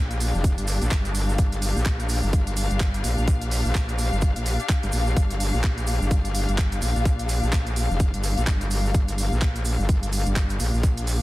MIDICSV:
0, 0, Header, 1, 4, 480
1, 0, Start_track
1, 0, Key_signature, -2, "minor"
1, 0, Tempo, 472441
1, 1409, Time_signature, 4, 2, 24, 8
1, 11402, End_track
2, 0, Start_track
2, 0, Title_t, "String section"
2, 0, Program_c, 0, 48
2, 0, Note_on_c, 0, 62, 70
2, 0, Note_on_c, 0, 67, 71
2, 0, Note_on_c, 0, 77, 84
2, 11402, Note_off_c, 0, 62, 0
2, 11402, Note_off_c, 0, 67, 0
2, 11402, Note_off_c, 0, 77, 0
2, 11402, End_track
3, 0, Start_track
3, 0, Title_t, "Wobble bass"
3, 0, Program_c, 1, 39
3, 0, Note_on_c, 1, 34, 101
3, 327, Note_off_c, 1, 34, 0
3, 350, Note_on_c, 1, 29, 99
3, 567, Note_off_c, 1, 29, 0
3, 589, Note_on_c, 1, 31, 98
3, 807, Note_off_c, 1, 31, 0
3, 829, Note_on_c, 1, 34, 96
3, 913, Note_off_c, 1, 34, 0
3, 929, Note_on_c, 1, 31, 100
3, 1393, Note_off_c, 1, 31, 0
3, 1408, Note_on_c, 1, 31, 94
3, 1767, Note_off_c, 1, 31, 0
3, 1790, Note_on_c, 1, 34, 98
3, 2247, Note_off_c, 1, 34, 0
3, 2270, Note_on_c, 1, 31, 100
3, 2727, Note_off_c, 1, 31, 0
3, 2749, Note_on_c, 1, 31, 93
3, 3073, Note_off_c, 1, 31, 0
3, 3089, Note_on_c, 1, 34, 104
3, 3207, Note_off_c, 1, 34, 0
3, 3230, Note_on_c, 1, 34, 102
3, 3688, Note_off_c, 1, 34, 0
3, 3710, Note_on_c, 1, 34, 97
3, 4168, Note_off_c, 1, 34, 0
3, 4191, Note_on_c, 1, 31, 99
3, 4408, Note_off_c, 1, 31, 0
3, 4431, Note_on_c, 1, 34, 93
3, 4648, Note_off_c, 1, 34, 0
3, 4910, Note_on_c, 1, 31, 93
3, 4993, Note_off_c, 1, 31, 0
3, 5009, Note_on_c, 1, 34, 98
3, 5233, Note_off_c, 1, 34, 0
3, 5248, Note_on_c, 1, 31, 97
3, 5607, Note_off_c, 1, 31, 0
3, 5628, Note_on_c, 1, 34, 98
3, 6087, Note_off_c, 1, 34, 0
3, 6109, Note_on_c, 1, 31, 98
3, 6567, Note_off_c, 1, 31, 0
3, 6588, Note_on_c, 1, 31, 95
3, 6912, Note_off_c, 1, 31, 0
3, 6927, Note_on_c, 1, 34, 101
3, 7047, Note_off_c, 1, 34, 0
3, 7069, Note_on_c, 1, 34, 102
3, 7527, Note_off_c, 1, 34, 0
3, 7549, Note_on_c, 1, 34, 98
3, 8007, Note_off_c, 1, 34, 0
3, 8030, Note_on_c, 1, 29, 99
3, 8247, Note_off_c, 1, 29, 0
3, 8269, Note_on_c, 1, 31, 97
3, 8487, Note_off_c, 1, 31, 0
3, 8509, Note_on_c, 1, 34, 100
3, 8592, Note_off_c, 1, 34, 0
3, 8608, Note_on_c, 1, 31, 98
3, 9072, Note_off_c, 1, 31, 0
3, 9088, Note_on_c, 1, 31, 96
3, 9447, Note_off_c, 1, 31, 0
3, 9469, Note_on_c, 1, 34, 99
3, 9927, Note_off_c, 1, 34, 0
3, 9948, Note_on_c, 1, 31, 95
3, 10406, Note_off_c, 1, 31, 0
3, 10428, Note_on_c, 1, 31, 97
3, 10752, Note_off_c, 1, 31, 0
3, 10768, Note_on_c, 1, 34, 99
3, 10887, Note_off_c, 1, 34, 0
3, 10908, Note_on_c, 1, 34, 101
3, 11366, Note_off_c, 1, 34, 0
3, 11402, End_track
4, 0, Start_track
4, 0, Title_t, "Drums"
4, 108, Note_on_c, 9, 42, 54
4, 115, Note_on_c, 9, 82, 26
4, 206, Note_on_c, 9, 46, 108
4, 210, Note_off_c, 9, 42, 0
4, 210, Note_off_c, 9, 82, 0
4, 210, Note_on_c, 9, 82, 104
4, 308, Note_off_c, 9, 46, 0
4, 312, Note_off_c, 9, 82, 0
4, 350, Note_on_c, 9, 82, 38
4, 448, Note_on_c, 9, 36, 124
4, 448, Note_on_c, 9, 42, 81
4, 451, Note_off_c, 9, 82, 0
4, 451, Note_on_c, 9, 82, 59
4, 549, Note_off_c, 9, 42, 0
4, 550, Note_off_c, 9, 36, 0
4, 553, Note_off_c, 9, 82, 0
4, 589, Note_on_c, 9, 42, 57
4, 591, Note_on_c, 9, 82, 25
4, 685, Note_off_c, 9, 82, 0
4, 685, Note_on_c, 9, 82, 104
4, 688, Note_on_c, 9, 46, 112
4, 690, Note_off_c, 9, 42, 0
4, 787, Note_off_c, 9, 82, 0
4, 789, Note_off_c, 9, 46, 0
4, 828, Note_on_c, 9, 42, 38
4, 835, Note_on_c, 9, 82, 43
4, 926, Note_on_c, 9, 39, 127
4, 927, Note_off_c, 9, 42, 0
4, 927, Note_on_c, 9, 42, 85
4, 928, Note_on_c, 9, 36, 117
4, 932, Note_off_c, 9, 82, 0
4, 932, Note_on_c, 9, 82, 51
4, 1028, Note_off_c, 9, 39, 0
4, 1029, Note_off_c, 9, 42, 0
4, 1030, Note_off_c, 9, 36, 0
4, 1033, Note_off_c, 9, 82, 0
4, 1067, Note_on_c, 9, 42, 53
4, 1071, Note_on_c, 9, 82, 28
4, 1165, Note_on_c, 9, 46, 106
4, 1167, Note_off_c, 9, 82, 0
4, 1167, Note_on_c, 9, 82, 87
4, 1169, Note_off_c, 9, 42, 0
4, 1267, Note_off_c, 9, 46, 0
4, 1269, Note_off_c, 9, 82, 0
4, 1311, Note_on_c, 9, 82, 44
4, 1406, Note_on_c, 9, 42, 82
4, 1407, Note_off_c, 9, 82, 0
4, 1407, Note_on_c, 9, 82, 61
4, 1408, Note_on_c, 9, 36, 127
4, 1507, Note_off_c, 9, 42, 0
4, 1509, Note_off_c, 9, 82, 0
4, 1510, Note_off_c, 9, 36, 0
4, 1548, Note_on_c, 9, 42, 49
4, 1551, Note_on_c, 9, 82, 30
4, 1646, Note_on_c, 9, 46, 117
4, 1649, Note_off_c, 9, 82, 0
4, 1649, Note_on_c, 9, 82, 92
4, 1650, Note_off_c, 9, 42, 0
4, 1748, Note_off_c, 9, 46, 0
4, 1751, Note_off_c, 9, 82, 0
4, 1795, Note_on_c, 9, 82, 44
4, 1886, Note_on_c, 9, 39, 127
4, 1887, Note_off_c, 9, 82, 0
4, 1887, Note_on_c, 9, 42, 80
4, 1887, Note_on_c, 9, 82, 56
4, 1888, Note_on_c, 9, 36, 123
4, 1987, Note_off_c, 9, 39, 0
4, 1988, Note_off_c, 9, 42, 0
4, 1988, Note_off_c, 9, 82, 0
4, 1990, Note_off_c, 9, 36, 0
4, 2029, Note_on_c, 9, 42, 53
4, 2029, Note_on_c, 9, 82, 28
4, 2123, Note_off_c, 9, 82, 0
4, 2123, Note_on_c, 9, 82, 101
4, 2128, Note_on_c, 9, 46, 111
4, 2130, Note_off_c, 9, 42, 0
4, 2225, Note_off_c, 9, 82, 0
4, 2230, Note_off_c, 9, 46, 0
4, 2263, Note_on_c, 9, 82, 39
4, 2365, Note_off_c, 9, 82, 0
4, 2368, Note_on_c, 9, 36, 127
4, 2368, Note_on_c, 9, 42, 80
4, 2372, Note_on_c, 9, 82, 55
4, 2469, Note_off_c, 9, 42, 0
4, 2470, Note_off_c, 9, 36, 0
4, 2474, Note_off_c, 9, 82, 0
4, 2509, Note_on_c, 9, 42, 56
4, 2513, Note_on_c, 9, 82, 24
4, 2608, Note_on_c, 9, 46, 116
4, 2609, Note_off_c, 9, 82, 0
4, 2609, Note_on_c, 9, 82, 91
4, 2611, Note_off_c, 9, 42, 0
4, 2709, Note_off_c, 9, 46, 0
4, 2710, Note_off_c, 9, 82, 0
4, 2747, Note_on_c, 9, 82, 41
4, 2749, Note_on_c, 9, 42, 37
4, 2842, Note_off_c, 9, 82, 0
4, 2842, Note_on_c, 9, 82, 52
4, 2848, Note_off_c, 9, 42, 0
4, 2848, Note_on_c, 9, 36, 118
4, 2848, Note_on_c, 9, 39, 127
4, 2848, Note_on_c, 9, 42, 81
4, 2944, Note_off_c, 9, 82, 0
4, 2949, Note_off_c, 9, 39, 0
4, 2950, Note_off_c, 9, 36, 0
4, 2950, Note_off_c, 9, 42, 0
4, 2989, Note_on_c, 9, 42, 52
4, 2989, Note_on_c, 9, 82, 28
4, 3088, Note_on_c, 9, 46, 107
4, 3090, Note_off_c, 9, 82, 0
4, 3091, Note_off_c, 9, 42, 0
4, 3094, Note_on_c, 9, 82, 95
4, 3189, Note_off_c, 9, 46, 0
4, 3196, Note_off_c, 9, 82, 0
4, 3228, Note_on_c, 9, 82, 39
4, 3329, Note_on_c, 9, 36, 127
4, 3329, Note_on_c, 9, 42, 80
4, 3330, Note_off_c, 9, 82, 0
4, 3333, Note_on_c, 9, 82, 59
4, 3430, Note_off_c, 9, 36, 0
4, 3430, Note_off_c, 9, 42, 0
4, 3435, Note_off_c, 9, 82, 0
4, 3469, Note_on_c, 9, 42, 50
4, 3474, Note_on_c, 9, 82, 27
4, 3569, Note_on_c, 9, 46, 111
4, 3571, Note_off_c, 9, 42, 0
4, 3575, Note_off_c, 9, 82, 0
4, 3575, Note_on_c, 9, 82, 95
4, 3671, Note_off_c, 9, 46, 0
4, 3677, Note_off_c, 9, 82, 0
4, 3706, Note_on_c, 9, 82, 41
4, 3807, Note_off_c, 9, 82, 0
4, 3808, Note_on_c, 9, 36, 125
4, 3809, Note_on_c, 9, 39, 118
4, 3810, Note_on_c, 9, 42, 77
4, 3816, Note_on_c, 9, 82, 59
4, 3910, Note_off_c, 9, 36, 0
4, 3910, Note_off_c, 9, 39, 0
4, 3911, Note_off_c, 9, 42, 0
4, 3917, Note_off_c, 9, 82, 0
4, 3948, Note_on_c, 9, 82, 28
4, 3951, Note_on_c, 9, 42, 52
4, 4049, Note_on_c, 9, 46, 114
4, 4050, Note_off_c, 9, 82, 0
4, 4050, Note_on_c, 9, 82, 86
4, 4053, Note_off_c, 9, 42, 0
4, 4150, Note_off_c, 9, 46, 0
4, 4152, Note_off_c, 9, 82, 0
4, 4194, Note_on_c, 9, 82, 39
4, 4281, Note_off_c, 9, 82, 0
4, 4281, Note_on_c, 9, 82, 53
4, 4288, Note_on_c, 9, 36, 121
4, 4288, Note_on_c, 9, 42, 76
4, 4382, Note_off_c, 9, 82, 0
4, 4390, Note_off_c, 9, 36, 0
4, 4390, Note_off_c, 9, 42, 0
4, 4430, Note_on_c, 9, 42, 52
4, 4432, Note_on_c, 9, 82, 28
4, 4529, Note_on_c, 9, 46, 110
4, 4532, Note_off_c, 9, 42, 0
4, 4533, Note_off_c, 9, 82, 0
4, 4533, Note_on_c, 9, 82, 93
4, 4631, Note_off_c, 9, 46, 0
4, 4634, Note_off_c, 9, 82, 0
4, 4670, Note_on_c, 9, 82, 36
4, 4671, Note_on_c, 9, 42, 35
4, 4768, Note_on_c, 9, 36, 121
4, 4768, Note_on_c, 9, 39, 123
4, 4769, Note_off_c, 9, 42, 0
4, 4769, Note_on_c, 9, 42, 76
4, 4772, Note_off_c, 9, 82, 0
4, 4774, Note_on_c, 9, 82, 53
4, 4870, Note_off_c, 9, 36, 0
4, 4870, Note_off_c, 9, 39, 0
4, 4871, Note_off_c, 9, 42, 0
4, 4875, Note_off_c, 9, 82, 0
4, 4907, Note_on_c, 9, 82, 28
4, 4910, Note_on_c, 9, 42, 51
4, 5000, Note_off_c, 9, 82, 0
4, 5000, Note_on_c, 9, 82, 92
4, 5009, Note_on_c, 9, 46, 105
4, 5011, Note_off_c, 9, 42, 0
4, 5102, Note_off_c, 9, 82, 0
4, 5110, Note_off_c, 9, 46, 0
4, 5147, Note_on_c, 9, 82, 40
4, 5248, Note_on_c, 9, 36, 127
4, 5249, Note_off_c, 9, 82, 0
4, 5249, Note_on_c, 9, 42, 79
4, 5256, Note_on_c, 9, 82, 48
4, 5350, Note_off_c, 9, 36, 0
4, 5351, Note_off_c, 9, 42, 0
4, 5357, Note_off_c, 9, 82, 0
4, 5389, Note_on_c, 9, 42, 51
4, 5396, Note_on_c, 9, 82, 29
4, 5488, Note_on_c, 9, 46, 107
4, 5491, Note_off_c, 9, 42, 0
4, 5493, Note_off_c, 9, 82, 0
4, 5493, Note_on_c, 9, 82, 85
4, 5590, Note_off_c, 9, 46, 0
4, 5595, Note_off_c, 9, 82, 0
4, 5627, Note_on_c, 9, 82, 37
4, 5724, Note_off_c, 9, 82, 0
4, 5724, Note_on_c, 9, 82, 47
4, 5727, Note_on_c, 9, 39, 122
4, 5728, Note_on_c, 9, 36, 116
4, 5728, Note_on_c, 9, 42, 81
4, 5825, Note_off_c, 9, 82, 0
4, 5829, Note_off_c, 9, 39, 0
4, 5829, Note_off_c, 9, 42, 0
4, 5830, Note_off_c, 9, 36, 0
4, 5869, Note_on_c, 9, 42, 53
4, 5872, Note_on_c, 9, 82, 28
4, 5963, Note_off_c, 9, 82, 0
4, 5963, Note_on_c, 9, 82, 97
4, 5968, Note_on_c, 9, 46, 101
4, 5971, Note_off_c, 9, 42, 0
4, 6065, Note_off_c, 9, 82, 0
4, 6069, Note_off_c, 9, 46, 0
4, 6114, Note_on_c, 9, 82, 42
4, 6208, Note_off_c, 9, 82, 0
4, 6208, Note_on_c, 9, 36, 117
4, 6208, Note_on_c, 9, 42, 72
4, 6208, Note_on_c, 9, 82, 50
4, 6309, Note_off_c, 9, 36, 0
4, 6309, Note_off_c, 9, 42, 0
4, 6310, Note_off_c, 9, 82, 0
4, 6349, Note_on_c, 9, 42, 53
4, 6357, Note_on_c, 9, 82, 27
4, 6447, Note_on_c, 9, 46, 109
4, 6450, Note_off_c, 9, 42, 0
4, 6451, Note_off_c, 9, 82, 0
4, 6451, Note_on_c, 9, 82, 101
4, 6549, Note_off_c, 9, 46, 0
4, 6553, Note_off_c, 9, 82, 0
4, 6589, Note_on_c, 9, 42, 36
4, 6597, Note_on_c, 9, 82, 36
4, 6685, Note_off_c, 9, 82, 0
4, 6685, Note_on_c, 9, 82, 57
4, 6687, Note_on_c, 9, 39, 118
4, 6688, Note_off_c, 9, 42, 0
4, 6688, Note_on_c, 9, 36, 115
4, 6688, Note_on_c, 9, 42, 80
4, 6787, Note_off_c, 9, 82, 0
4, 6789, Note_off_c, 9, 36, 0
4, 6789, Note_off_c, 9, 39, 0
4, 6789, Note_off_c, 9, 42, 0
4, 6829, Note_on_c, 9, 42, 53
4, 6830, Note_on_c, 9, 82, 26
4, 6928, Note_on_c, 9, 46, 105
4, 6929, Note_off_c, 9, 82, 0
4, 6929, Note_on_c, 9, 82, 91
4, 6931, Note_off_c, 9, 42, 0
4, 7029, Note_off_c, 9, 46, 0
4, 7030, Note_off_c, 9, 82, 0
4, 7070, Note_on_c, 9, 82, 37
4, 7167, Note_on_c, 9, 36, 121
4, 7167, Note_on_c, 9, 42, 81
4, 7172, Note_off_c, 9, 82, 0
4, 7172, Note_on_c, 9, 82, 54
4, 7268, Note_off_c, 9, 42, 0
4, 7269, Note_off_c, 9, 36, 0
4, 7274, Note_off_c, 9, 82, 0
4, 7307, Note_on_c, 9, 82, 24
4, 7308, Note_on_c, 9, 42, 49
4, 7406, Note_off_c, 9, 82, 0
4, 7406, Note_on_c, 9, 82, 86
4, 7407, Note_on_c, 9, 46, 104
4, 7410, Note_off_c, 9, 42, 0
4, 7508, Note_off_c, 9, 82, 0
4, 7509, Note_off_c, 9, 46, 0
4, 7552, Note_on_c, 9, 82, 38
4, 7646, Note_off_c, 9, 82, 0
4, 7646, Note_on_c, 9, 39, 111
4, 7646, Note_on_c, 9, 82, 46
4, 7647, Note_on_c, 9, 42, 82
4, 7648, Note_on_c, 9, 36, 119
4, 7748, Note_off_c, 9, 39, 0
4, 7748, Note_off_c, 9, 42, 0
4, 7748, Note_off_c, 9, 82, 0
4, 7749, Note_off_c, 9, 36, 0
4, 7789, Note_on_c, 9, 42, 55
4, 7792, Note_on_c, 9, 82, 25
4, 7886, Note_on_c, 9, 46, 103
4, 7890, Note_off_c, 9, 42, 0
4, 7892, Note_off_c, 9, 82, 0
4, 7892, Note_on_c, 9, 82, 85
4, 7988, Note_off_c, 9, 46, 0
4, 7993, Note_off_c, 9, 82, 0
4, 8035, Note_on_c, 9, 82, 38
4, 8125, Note_off_c, 9, 82, 0
4, 8125, Note_on_c, 9, 82, 54
4, 8127, Note_on_c, 9, 42, 78
4, 8128, Note_on_c, 9, 36, 115
4, 8227, Note_off_c, 9, 82, 0
4, 8229, Note_off_c, 9, 36, 0
4, 8229, Note_off_c, 9, 42, 0
4, 8269, Note_on_c, 9, 42, 54
4, 8272, Note_on_c, 9, 82, 22
4, 8367, Note_off_c, 9, 82, 0
4, 8367, Note_on_c, 9, 46, 106
4, 8367, Note_on_c, 9, 82, 89
4, 8370, Note_off_c, 9, 42, 0
4, 8468, Note_off_c, 9, 82, 0
4, 8469, Note_off_c, 9, 46, 0
4, 8508, Note_on_c, 9, 42, 37
4, 8519, Note_on_c, 9, 82, 39
4, 8606, Note_on_c, 9, 39, 121
4, 8607, Note_off_c, 9, 42, 0
4, 8607, Note_on_c, 9, 42, 86
4, 8608, Note_on_c, 9, 36, 112
4, 8617, Note_off_c, 9, 82, 0
4, 8617, Note_on_c, 9, 82, 50
4, 8708, Note_off_c, 9, 39, 0
4, 8709, Note_off_c, 9, 36, 0
4, 8709, Note_off_c, 9, 42, 0
4, 8719, Note_off_c, 9, 82, 0
4, 8748, Note_on_c, 9, 82, 26
4, 8749, Note_on_c, 9, 42, 55
4, 8848, Note_on_c, 9, 46, 102
4, 8849, Note_off_c, 9, 82, 0
4, 8849, Note_on_c, 9, 82, 93
4, 8850, Note_off_c, 9, 42, 0
4, 8949, Note_off_c, 9, 46, 0
4, 8950, Note_off_c, 9, 82, 0
4, 8995, Note_on_c, 9, 82, 39
4, 9084, Note_off_c, 9, 82, 0
4, 9084, Note_on_c, 9, 82, 53
4, 9088, Note_on_c, 9, 36, 119
4, 9088, Note_on_c, 9, 42, 90
4, 9185, Note_off_c, 9, 82, 0
4, 9190, Note_off_c, 9, 36, 0
4, 9190, Note_off_c, 9, 42, 0
4, 9226, Note_on_c, 9, 82, 26
4, 9229, Note_on_c, 9, 42, 55
4, 9328, Note_off_c, 9, 82, 0
4, 9328, Note_on_c, 9, 46, 105
4, 9331, Note_off_c, 9, 42, 0
4, 9332, Note_on_c, 9, 82, 83
4, 9429, Note_off_c, 9, 46, 0
4, 9433, Note_off_c, 9, 82, 0
4, 9471, Note_on_c, 9, 82, 36
4, 9567, Note_on_c, 9, 39, 114
4, 9568, Note_on_c, 9, 36, 114
4, 9568, Note_on_c, 9, 42, 85
4, 9570, Note_off_c, 9, 82, 0
4, 9570, Note_on_c, 9, 82, 43
4, 9669, Note_off_c, 9, 36, 0
4, 9669, Note_off_c, 9, 39, 0
4, 9669, Note_off_c, 9, 42, 0
4, 9672, Note_off_c, 9, 82, 0
4, 9707, Note_on_c, 9, 82, 25
4, 9710, Note_on_c, 9, 42, 55
4, 9803, Note_off_c, 9, 82, 0
4, 9803, Note_on_c, 9, 82, 91
4, 9807, Note_on_c, 9, 46, 98
4, 9811, Note_off_c, 9, 42, 0
4, 9905, Note_off_c, 9, 82, 0
4, 9909, Note_off_c, 9, 46, 0
4, 9954, Note_on_c, 9, 82, 39
4, 10048, Note_off_c, 9, 82, 0
4, 10048, Note_on_c, 9, 36, 117
4, 10048, Note_on_c, 9, 42, 85
4, 10048, Note_on_c, 9, 82, 53
4, 10149, Note_off_c, 9, 36, 0
4, 10149, Note_off_c, 9, 42, 0
4, 10150, Note_off_c, 9, 82, 0
4, 10189, Note_on_c, 9, 42, 57
4, 10192, Note_on_c, 9, 82, 24
4, 10288, Note_off_c, 9, 82, 0
4, 10288, Note_on_c, 9, 46, 105
4, 10288, Note_on_c, 9, 82, 88
4, 10291, Note_off_c, 9, 42, 0
4, 10390, Note_off_c, 9, 46, 0
4, 10390, Note_off_c, 9, 82, 0
4, 10422, Note_on_c, 9, 82, 36
4, 10429, Note_on_c, 9, 42, 42
4, 10524, Note_off_c, 9, 82, 0
4, 10528, Note_on_c, 9, 36, 110
4, 10528, Note_on_c, 9, 39, 120
4, 10529, Note_off_c, 9, 42, 0
4, 10529, Note_on_c, 9, 42, 89
4, 10532, Note_on_c, 9, 82, 53
4, 10629, Note_off_c, 9, 36, 0
4, 10629, Note_off_c, 9, 39, 0
4, 10630, Note_off_c, 9, 42, 0
4, 10633, Note_off_c, 9, 82, 0
4, 10659, Note_on_c, 9, 82, 23
4, 10670, Note_on_c, 9, 42, 55
4, 10761, Note_off_c, 9, 82, 0
4, 10768, Note_on_c, 9, 46, 101
4, 10769, Note_on_c, 9, 82, 87
4, 10771, Note_off_c, 9, 42, 0
4, 10870, Note_off_c, 9, 46, 0
4, 10871, Note_off_c, 9, 82, 0
4, 10912, Note_on_c, 9, 82, 39
4, 11008, Note_on_c, 9, 36, 118
4, 11008, Note_on_c, 9, 42, 87
4, 11012, Note_off_c, 9, 82, 0
4, 11012, Note_on_c, 9, 82, 55
4, 11109, Note_off_c, 9, 36, 0
4, 11110, Note_off_c, 9, 42, 0
4, 11114, Note_off_c, 9, 82, 0
4, 11149, Note_on_c, 9, 82, 28
4, 11150, Note_on_c, 9, 42, 57
4, 11249, Note_on_c, 9, 46, 102
4, 11251, Note_off_c, 9, 82, 0
4, 11252, Note_off_c, 9, 42, 0
4, 11252, Note_on_c, 9, 82, 93
4, 11350, Note_off_c, 9, 46, 0
4, 11354, Note_off_c, 9, 82, 0
4, 11402, End_track
0, 0, End_of_file